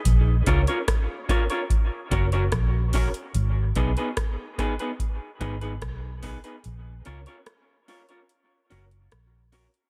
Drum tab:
HH |x-xxx-xxx-xxx-ox|x-xxx-xxx-xxx-ox|x-xxx-oxx-oxx-ox|
SD |----r-------r---|----r-r-----r---|----r-------r---|
BD |o-o-o-o-o-o-o-o-|o-o-o-o-o-o-o-o-|----------------|